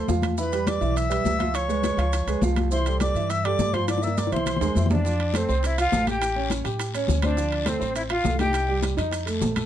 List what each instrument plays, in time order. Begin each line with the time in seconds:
0.08 upright bass E2, grand piano F3 F4 F5, high bongo, low bongo, high conga, low timbale, maracas
0.22 high bongo, high conga, high timbale, maracas
0.38 grand piano E3 E4 E5, flute B4 B5, high bongo, high conga, maracas
0.52 grand piano G3 G4 B4, high bongo, high conga, high timbale, maracas
0.67 flute D5 D6, high bongo, high conga, high timbale, low timbale, maracas
0.81 upright bass B1, grand piano E3 E4 E5, high bongo, high conga, maracas
0.96 flute E5 E6, high bongo, high conga, high timbale, maracas
1.09 grand piano G3 G4 B4, high conga, high timbale, maracas
1.25 upright bass C#2, high bongo, low bongo, high conga, low timbale, maracas
1.38 grand piano F3 F4 F5, high bongo, high conga, high timbale, maracas
1.54 flute C#5 C#6, high bongo, high conga, high timbale, maracas
1.68 grand piano G#3 G#4 B4, high bongo, high conga, maracas
1.83 grand piano G#3 G#4 B4, high bongo, high conga, high timbale, low timbale, maracas
1.97 upright bass C#2, grand piano F3 F4 F5, high bongo, high conga, high timbale, maracas
2.13 high bongo, high conga, high timbale, maracas
2.27 upright bass C#2, grand piano G#3 G#4 B4, high conga, high timbale, maracas
2.41 upright bass C2, grand piano F3 F4 F5, high bongo, low bongo, high conga, low timbale, maracas
2.56 high bongo, high conga, high timbale, maracas
2.71 grand piano E3 E4 E5, flute C5 C6, high bongo, high conga, maracas
2.86 grand piano G3 G4 A4, high bongo, high conga, high timbale, maracas
3.00 flute D5 D6, high bongo, high conga, high timbale, low timbale, maracas
3.14 upright bass G2, grand piano E3 E4 E5, high bongo, high conga, maracas
3.30 flute E5 E6, high bongo, high conga, high timbale, maracas
3.44 grand piano G3 G4 A4, flute D5 D6, high conga, high timbale
3.59 upright bass G2, high bongo, low bongo, high conga, low timbale, maracas
3.73 grand piano F3 F4 F5, flute C5 C6, high bongo, high conga, high timbale, maracas
3.88 flute D5 D6, high bongo, high conga, high timbale, maracas
3.98 high bongo
4.02 grand piano A#3 A#4 D5, flute E5 E6, high conga, maracas
4.07 high bongo
4.17 grand piano A#3 A#4 D5, flute D5 D6, high conga, high timbale, low timbale, maracas
4.27 high bongo
4.32 upright bass C2, grand piano E3 E4 E5, flute C5 C6, high conga, high timbale, maracas
4.36 low bongo
4.46 low bongo, high conga, high timbale, maracas
4.56 low bongo
4.61 upright bass D#2, grand piano G#3 G#4 A#4, high conga, high timbale, maracas
4.75 upright bass F2, grand piano E3 E4 E5, high conga, maracas
4.86 low bongo
4.90 flute D4 D5, high conga, low timbale, maracas
4.95 low bongo
5.05 grand piano F3 F4, high bongo, high conga, long guiro, maracas
5.19 high bongo, high conga, high timbale
5.34 grand piano A3 A4, flute C4 C5, high bongo, high conga, high timbale, low timbale, short guiro, maracas
5.48 upright bass C2, grand piano C4 C5, high bongo, high conga, short guiro, maracas
5.63 flute E4 E5, high bongo, high conga, high timbale, long guiro, maracas
5.78 grand piano F4 F5, flute F4 F5, high conga, high timbale, maracas
5.92 upright bass A1, grand piano A3 A4, high bongo, low bongo, high conga, low timbale, short guiro, maracas
6.07 grand piano G4 G5, flute G4 G5, high bongo, high conga, high timbale, short guiro, maracas
6.21 high bongo, high conga, high timbale, long guiro, maracas
6.36 grand piano C#4 C#5, high bongo, high conga
6.50 high bongo, high conga, high timbale, low timbale, short guiro, maracas
6.64 upright bass A2, grand piano G4 G5, high bongo, high conga, high timbale, short guiro, maracas
6.79 high bongo, high conga, high timbale, long guiro, maracas
6.94 grand piano C#4 C#5, high conga, high timbale, maracas
7.08 upright bass D2, high bongo, low bongo, high conga, low timbale, short guiro, maracas
7.22 grand piano C4 C5, flute D4 D5, high bongo, high conga, high timbale, short guiro, maracas
7.37 grand piano F3 F4, high bongo, long guiro, maracas
7.52 high bongo, high conga, high timbale
7.66 grand piano A3 A4, flute C4 C5, high bongo, high conga, high timbale, low timbale, short guiro, maracas
7.80 upright bass A1, grand piano C4 C5, high bongo, high conga, short guiro, maracas
7.95 flute E4 E5, high bongo, high conga, high timbale, long guiro, maracas
8.10 grand piano F4 F5, flute F4 F5, high conga, high timbale
8.24 upright bass C2, grand piano A3 A4, high bongo, low bongo, high conga, low timbale, short guiro, maracas
8.39 grand piano D#4 D#5, flute G4 G5, high bongo, high conga, high timbale, short guiro, maracas
8.53 high bongo, high conga, high timbale, long guiro, maracas
8.68 grand piano G3 G4, high bongo, high conga
8.82 high bongo, high conga, high timbale, low timbale, short guiro, maracas
8.97 upright bass F2, grand piano D#4 D#5, high bongo, high conga, high timbale, short guiro, maracas
9.11 high bongo, high conga, high timbale, long guiro, maracas
9.26 grand piano A3 A4, high conga, high timbale, maracas
9.41 upright bass A#1, high bongo, low bongo, high conga, low timbale, short guiro, maracas
9.55 grand piano A3 A4, high bongo, high conga, high timbale, short guiro, maracas